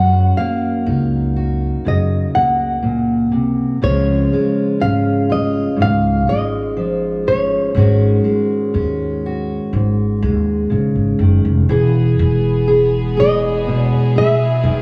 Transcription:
Already playing: F#2 C#4 F#4 F#5
0.37 A#3 F5
0.86 C#2 D#4
1.36 F#4
1.85 F#2 C#3 D#5
2.33 C#2 A#3 F#5
2.83 A#2
3.32 C3
3.82 C#2 C#3 F3 G#3 C#4 F4 C#5
4.33 G#3
4.80 G#1 C#4 F5
5.29 F4 D#5
5.76 C#2 G#2
5.82 F5
6.27 G#1 G#3 D#5
6.77 F3
7.27 C#4 C#5
7.75 G#1 G#2 D#3 G#3 C#4 F#4
8.24 G#3
8.74 D#2 C#4
9.26 F#4
9.68 C5
9.73 G#1 G#2
10.22 D#2 G#3
10.70 A#1 C#3
10.95 G#1
11.19 F#1 D#3
11.45 F1
11.69 E1 E3 G#3 B3 G#4
12.19 E1
12.68 G#4
13.17 G#4 D#5
13.67 B2
13.85 C#5
14.16 G#4 E5
14.63 E1 D#3
14.80 D#5

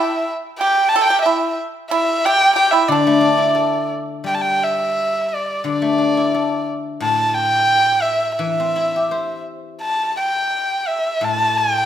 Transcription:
Already playing: E4 E5
0.59 G4 G5
0.89 A5
0.96 A4
1.04 G5
1.10 G4
1.22 E4 E5
1.90 E4 E5
2.25 G4 G5
2.56 G4 G5
2.71 E4 E5
2.88 D3 D4 D5
3.07 A3
3.21 D4
3.37 E4
3.55 A4
4.24 G3 G5
4.35 A5
4.42 G5
4.64 E5
5.35 D5
5.64 D3
5.70 D5
5.82 A3
5.98 D4
6.17 E4
6.34 A4
7.00 A2 A5
7.30 A5
7.34 G5
8.02 E5
8.37 E3 E5
8.60 C4
8.76 E4
8.96 G4
9.11 C5
9.82 A5
10.17 G5
10.87 E5
11.21 A2 A5
11.58 G5

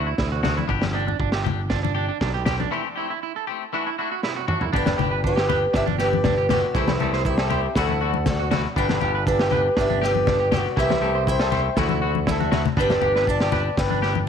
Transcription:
Already playing: D2
0.06 E4
0.18 D2 E4, kick, snare
0.32 F#4
0.43 D4 F#4, snare, low conga
0.57 E4, high conga
0.68 G1 B3 D4 G4, muted clean electric guitar stroke, kick
0.82 snare, high conga
0.93 D4 G4
1.08 D4, high conga
1.20 G1 D4, kick
1.32 G4, snare
1.44 D4 G4, high conga, low conga
1.70 D4, kick, snare
1.83 D4, high conga
1.95 D4 G4
2.09 D4
2.21 B1 D4, kick, snare
2.34 G4
2.46 G4, snare, low conga
2.60 D4, high conga
2.71 E3 A3 C4 E4 G4
2.96 A3 C4 E4 G4
3.10 E4
3.23 E4
3.36 A4
3.47 A3 C4 G4
3.73 E3 A3 D4 E4 F#4
3.87 E4
3.99 A3 D4 E4 F#4
4.12 F#4
4.23 E4, snare
4.36 F#4
4.48 A3 D4 F#4, mid tom
4.61 E4, floor tom
4.73 G1 B3 D4 G4 D5 G5, kick
4.77 B4
4.86 D4, snare, high conga
4.98 G1 D4 G4, low conga
5.11 B4
5.24 D4 G4 B4 D5, kick
5.36 G4, snare
5.49 D4 G4 B4, snare, low conga
5.73 G1 D4 G4 B4 E5, kick, snare
5.86 D4, high conga
5.98 G4 B4 D5, snare
6.04 D4
6.13 high conga
6.24 D4, kick, snare, low conga
6.38 G4
6.49 F#4 G4 B4 D5, snare, low conga
6.53 D4
6.74 C2 E3 A3 E4 G4 A4 C5, muted clean electric guitar stroke, kick
6.88 E4, snare, high conga
7.00 C2 A3 E4 G4 A4, low conga
7.13 C5, snare
7.25 E4 C5 E5, kick
7.29 G4
7.38 A4, snare
7.50 A3 E4 G4 C5, low conga
7.75 D2 E3 A3 E4 F#4 D5 F#5, kick, snare
7.80 A4
7.88 E4, high conga
8.01 A3 E4 F#4
8.14 high conga
8.26 F#4 A4 D5, kick, snare, low conga
8.40 F#4
8.51 A3 E4 F#4, snare, high conga, low conga
8.76 G1 B3 D4 G4 B4 D5 G5, kick
8.89 D4, snare, high conga
9.00 G1 D4 G4, low conga
9.15 B4
9.27 D4 G4 B4 D5, kick
9.39 G4, snare
9.51 D4 G4 B4, low conga
9.77 G1 D4 G4 B4, kick, snare
9.81 E5
9.90 D4, high conga
10.02 D4 G4 B4, snare
10.06 D5
10.15 high conga
10.27 D4, kick, snare, low conga
10.40 G4
10.52 G4 B4, muted clean electric guitar stroke, snare, high conga, low conga
10.56 F#4 D5
10.77 C2 E3 A3 E4 G4 C5 E5, kick, snare
10.81 G4
10.90 E4, snare, high conga
11.02 C2 A3 E4 G4 A4
11.15 C5
11.27 E4 C5 E5 G5, kick
11.39 A4, snare
11.51 A3 E4 G4 C5, snare, low conga
11.77 D2 E3 A3 E4 F#4 A4 D5, kick, snare, high conga
11.89 E4, high conga
12.02 E4 F#4
12.15 high conga
12.27 E4 A4 E5, kick, snare, high conga
12.31 A4
12.40 F#4, high conga
12.52 A3 E4 F#4, snare, low conga
12.65 low conga
12.77 G1 B3 D4 G4 B4 D5, kick, snare
12.81 G4
12.90 D4, snare, high conga
13.01 G1 D4 G4, low conga
13.16 B4, snare
13.27 D4 D5 A5, kick
13.40 G4, snare
13.52 D4 G4 B4, snare, low conga
13.77 G1 B4 D5 G5, muted clean electric guitar stroke, kick, snare
13.90 D4, high conga
14.02 D4 G4, snare
14.15 high conga

